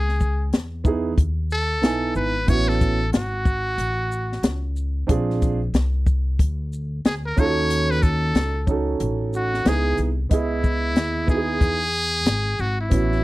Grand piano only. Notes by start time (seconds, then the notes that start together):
0.84 B3 D#4 E4 G#4
1.81 B3 D#4 E4 G#5
2.46 B3 C#4 E4
2.50 F#4
5.07 C4 D4 F4 G#4
7.36 C#4 D#4 F4
7.40 A4
7.46 F#4
8.67 C#4 D#4 F#4
8.71 A4
9.64 B3 D#4 E4 G#4
10.29 B3 E4 D#5
10.34 G#4
11.27 B3 D#4 E4
11.31 F#4
11.37 G#4
12.90 B3 C#4 E4 F#4